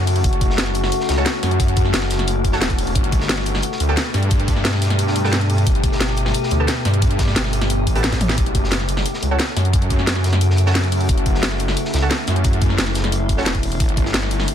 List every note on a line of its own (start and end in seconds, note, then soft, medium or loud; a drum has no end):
0.00 0.23 F#2 loud
0.00 2.92 C#3 medium
0.00 8.34 A3 medium
0.00 2.91 F#4 loud
0.07 closed hi-hat medium
0.07 open hi-hat medium
0.16 closed hi-hat soft
0.24 0.40 F#1 medium
0.24 kick loud
0.24 closed hi-hat medium
0.24 closed hi-hat loud
0.33 closed hi-hat soft
0.41 0.91 F#1 loud
0.41 kick loud
0.41 closed hi-hat medium
0.50 snare medium
0.58 snare loud
0.58 closed hi-hat medium
0.66 snare soft
0.75 closed hi-hat medium
0.84 snare soft
0.84 snare medium
0.92 closed hi-hat medium
0.92 closed hi-hat loud
1.00 snare soft
1.09 1.25 C#2 loud
1.09 snare loud
1.09 closed hi-hat medium
1.17 1.32 C#4 medium
1.17 1.32 F#4 medium
1.17 1.32 A4 medium
1.25 snare loud
1.25 closed hi-hat medium
1.43 1.92 F#2 medium
1.43 snare soft
1.43 closed hi-hat medium
1.51 closed hi-hat soft
1.60 kick loud
1.60 closed hi-hat medium
1.60 closed hi-hat loud
1.68 closed hi-hat soft
1.76 kick loud
1.76 closed hi-hat medium
1.85 snare soft
1.93 2.43 F#1 loud
1.93 snare loud
1.93 closed hi-hat medium
2.02 snare soft
2.10 snare medium
2.10 closed hi-hat medium
2.19 snare soft
2.19 closed hi-hat soft
2.27 closed hi-hat medium
2.44 2.60 F#1 loud
2.44 kick medium
2.44 closed hi-hat medium
2.52 2.68 C#4 medium
2.52 2.68 F#4 medium
2.52 2.68 A4 medium
2.52 snare medium
2.61 2.94 E1 loud
2.61 snare loud
2.61 closed hi-hat medium
2.70 kick medium
2.70 closed hi-hat soft
2.78 closed hi-hat medium
2.78 open hi-hat medium
2.87 closed hi-hat soft
2.95 3.11 G1 medium
2.95 8.34 B2 medium
2.95 8.34 G4 loud
2.95 kick loud
2.95 closed hi-hat medium
3.04 closed hi-hat soft
3.12 3.62 G1 loud
3.12 kick loud
3.12 closed hi-hat medium
3.20 snare medium
3.29 snare loud
3.29 closed hi-hat medium
3.38 snare soft
3.46 closed hi-hat medium
3.54 snare soft
3.62 closed hi-hat medium
3.72 snare soft
3.80 3.96 D2 loud
3.80 closed hi-hat medium
3.89 4.04 B3 medium
3.89 4.04 G4 medium
3.89 4.04 A4 medium
3.97 snare loud
3.97 closed hi-hat medium
4.14 4.64 G2 loud
4.14 snare soft
4.14 closed hi-hat medium
4.23 closed hi-hat soft
4.30 kick loud
4.30 closed hi-hat medium
4.40 closed hi-hat soft
4.48 kick loud
4.48 closed hi-hat medium
4.56 snare soft
4.64 5.65 G2 loud
4.64 snare loud
4.64 closed hi-hat medium
4.73 snare soft
4.82 snare medium
4.82 closed hi-hat medium
4.90 snare soft
4.90 closed hi-hat soft
4.99 closed hi-hat medium
5.07 snare soft
5.16 closed hi-hat medium
5.24 5.39 B3 medium
5.24 5.39 G4 medium
5.24 5.39 A4 medium
5.24 snare soft
5.33 snare loud
5.33 closed hi-hat medium
5.41 closed hi-hat soft
5.50 closed hi-hat medium
5.50 open hi-hat medium
5.58 closed hi-hat soft
5.67 5.82 G1 medium
5.67 kick loud
5.67 closed hi-hat loud
5.67 closed hi-hat medium
5.75 closed hi-hat soft
5.83 6.33 G1 loud
5.83 kick loud
5.83 closed hi-hat medium
5.92 snare medium
6.01 snare loud
6.01 closed hi-hat medium
6.01 closed hi-hat loud
6.09 snare soft
6.17 closed hi-hat medium
6.26 snare medium
6.26 snare soft
6.34 closed hi-hat loud
6.34 closed hi-hat medium
6.43 snare soft
6.51 6.67 D2 loud
6.51 closed hi-hat medium
6.60 6.75 B3 medium
6.60 6.75 G4 medium
6.60 6.75 A4 medium
6.68 snare loud
6.68 closed hi-hat medium
6.85 7.35 G2 loud
6.85 snare soft
6.85 closed hi-hat medium
6.94 closed hi-hat soft
7.02 kick loud
7.02 closed hi-hat medium
7.02 closed hi-hat loud
7.11 closed hi-hat soft
7.19 kick loud
7.19 snare loud
7.19 closed hi-hat medium
7.28 snare soft
7.36 7.86 G1 loud
7.36 snare loud
7.36 closed hi-hat loud
7.36 closed hi-hat medium
7.45 snare soft
7.53 closed hi-hat medium
7.61 snare soft
7.61 closed hi-hat soft
7.70 closed hi-hat medium
7.70 closed hi-hat loud
7.87 8.36 A1 loud
7.87 kick medium
7.87 closed hi-hat medium
7.95 8.10 B3 medium
7.95 8.10 G4 medium
7.95 8.10 A4 medium
7.95 closed hi-hat medium
8.04 snare loud
8.04 closed hi-hat loud
8.04 high tom medium
8.12 kick medium
8.12 snare medium
8.12 snare loud
8.12 closed hi-hat soft
8.12 closed hi-hat medium
8.21 closed hi-hat medium
8.21 mid tom medium
8.29 snare medium
8.29 closed hi-hat soft
8.38 8.53 F#1 medium
8.38 13.76 C#3 medium
8.38 14.55 A3 medium
8.38 11.06 F#4 loud
8.38 kick loud
8.38 closed hi-hat medium
8.38 closed hi-hat loud
8.46 closed hi-hat soft
8.55 9.04 F#1 loud
8.55 kick loud
8.55 closed hi-hat medium
8.64 snare medium
8.71 snare loud
8.71 closed hi-hat medium
8.71 closed hi-hat loud
8.80 snare soft
8.88 closed hi-hat medium
8.97 snare soft
9.05 closed hi-hat medium
9.14 snare soft
9.22 9.38 C#2 loud
9.22 closed hi-hat medium
9.31 9.46 C#4 medium
9.31 9.46 F#4 medium
9.31 9.46 A4 medium
9.39 snare loud
9.39 closed hi-hat medium
9.56 10.06 F#2 loud
9.56 snare soft
9.56 closed hi-hat medium
9.65 closed hi-hat soft
9.73 kick loud
9.73 closed hi-hat medium
9.82 closed hi-hat soft
9.90 kick loud
9.90 closed hi-hat medium
9.99 snare soft
10.07 11.08 F#2 loud
10.07 snare loud
10.07 closed hi-hat medium
10.16 snare soft
10.24 snare medium
10.24 closed hi-hat medium
10.33 snare medium
10.33 closed hi-hat soft
10.41 closed hi-hat loud
10.41 closed hi-hat medium
10.50 snare soft
10.57 closed hi-hat medium
10.66 10.82 C#4 medium
10.66 10.82 F#4 medium
10.66 10.82 A4 medium
10.66 snare medium
10.75 snare loud
10.75 closed hi-hat medium
10.84 closed hi-hat soft
10.92 closed hi-hat medium
10.92 open hi-hat medium
11.01 closed hi-hat soft
11.09 11.25 F#1 medium
11.09 13.77 E4 loud
11.09 kick loud
11.09 closed hi-hat medium
11.18 closed hi-hat soft
11.26 11.75 F#1 loud
11.26 kick loud
11.26 closed hi-hat medium
11.34 snare medium
11.42 snare loud
11.42 closed hi-hat medium
11.51 snare soft
11.59 closed hi-hat medium
11.68 snare soft
11.77 closed hi-hat medium
11.77 closed hi-hat loud
11.85 snare soft
11.93 12.09 C#2 loud
11.93 snare loud
11.93 closed hi-hat medium
12.02 12.17 C#4 medium
12.02 12.17 F#4 medium
12.02 12.17 A4 medium
12.10 snare loud
12.10 closed hi-hat medium
12.27 12.77 F#2 loud
12.27 snare soft
12.27 closed hi-hat medium
12.36 closed hi-hat soft
12.44 kick loud
12.44 closed hi-hat loud
12.44 closed hi-hat medium
12.53 closed hi-hat soft
12.62 kick loud
12.62 closed hi-hat medium
12.70 snare soft
12.78 13.28 F#1 medium
12.78 snare loud
12.78 closed hi-hat medium
12.87 snare soft
12.95 snare medium
12.95 closed hi-hat medium
13.04 snare soft
13.04 closed hi-hat soft
13.12 closed hi-hat medium
13.29 13.45 F#1 loud
13.29 kick medium
13.29 closed hi-hat medium
13.37 13.53 C#4 medium
13.37 13.53 F#4 medium
13.37 13.53 A4 medium
13.37 snare medium
13.46 13.79 E1 loud
13.46 snare loud
13.46 closed hi-hat medium
13.55 kick medium
13.55 closed hi-hat soft
13.63 closed hi-hat medium
13.63 open hi-hat medium
13.72 closed hi-hat soft
13.80 13.96 G1 loud
13.80 14.55 B2 medium
13.80 14.55 G4 loud
13.80 kick loud
13.80 closed hi-hat medium
13.89 closed hi-hat soft
13.97 14.47 G1 loud
13.97 kick loud
13.97 closed hi-hat medium
14.06 snare medium
14.14 snare loud
14.14 closed hi-hat medium
14.22 snare soft
14.31 closed hi-hat medium
14.39 snare soft
14.48 closed hi-hat medium